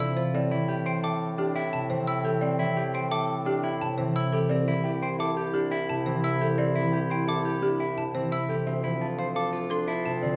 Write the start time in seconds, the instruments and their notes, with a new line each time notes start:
Already playing: bassoon F2, harp C3 E3, clarinet D4
0.00 clean electric guitar E4, xylophone E6
0.17 clean electric guitar F4, marimba C5
0.34 bassoon A2, clarinet C4, clean electric guitar C4, marimba D5
0.51 harp E3, clean electric guitar E4
0.68 clean electric guitar G4, marimba G5
0.86 clean electric guitar C5, xylophone G5
1.03 clean electric guitar A4, marimba E5, xylophone D6
1.38 clean electric guitar D4, marimba G4
1.56 clean electric guitar E4, marimba G5
1.73 harp C3, xylophone A5
1.90 harp E3, clean electric guitar C4, marimba C5
2.07 clean electric guitar E4, xylophone E6
2.25 clean electric guitar G4, marimba A4
2.41 clean electric guitar C4, marimba D5
2.59 harp E3, clean electric guitar E4
2.77 clean electric guitar G4, marimba G5
2.94 clean electric guitar C5, xylophone G5
3.11 clean electric guitar A4, marimba E5, xylophone D6
3.46 clean electric guitar D4, marimba G4
3.63 clean electric guitar E4, marimba G5
3.81 harp C3, xylophone A5
3.98 harp E3, clean electric guitar C4, marimba C5
4.16 clean electric guitar E4, xylophone E6
4.32 clean electric guitar G4, marimba A4
4.49 bassoon C2, clean electric guitar C4, clarinet E4, marimba D5
4.68 harp E3, clean electric guitar E4
4.84 clean electric guitar G4, marimba G5
5.02 clean electric guitar C5, xylophone G5
5.19 clean electric guitar A4, marimba E5, xylophone D6
5.37 clean electric guitar G4
5.54 clean electric guitar D4, marimba G4
5.71 clean electric guitar E4, marimba G5
5.89 harp C3, xylophone A5
6.06 harp E3, clean electric guitar C4, marimba C5
6.24 clean electric guitar E4, xylophone E6
6.41 harp C4, clean electric guitar G4, marimba A4
6.58 clean electric guitar C4, marimba D5
6.76 harp E3, clean electric guitar E4
6.92 clean electric guitar G4, marimba G5
7.10 clean electric guitar C5, xylophone G5
7.28 clean electric guitar A4, marimba E5, xylophone D6
7.45 clean electric guitar G4
7.63 clean electric guitar D4, marimba G4
7.80 clean electric guitar E4, marimba G5
7.97 harp C3, xylophone A5
8.15 harp E3, clean electric guitar C4, marimba C5
8.32 clean electric guitar E4, xylophone E6
8.49 harp C4, clean electric guitar G4, marimba A4
8.67 bassoon D2, clean electric guitar C4, clarinet F4, marimba E5
8.83 harp F3, clean electric guitar E4
9.01 clean electric guitar F4, marimba A5
9.19 clean electric guitar C5, xylophone F5
9.35 clean electric guitar A4, marimba F5, xylophone D6
9.53 clean electric guitar F4
9.70 clean electric guitar D4, marimba A4, xylophone C6
9.88 clean electric guitar E4, marimba A5
10.06 harp C3, xylophone A5
10.23 harp D3, clean electric guitar C4, marimba D5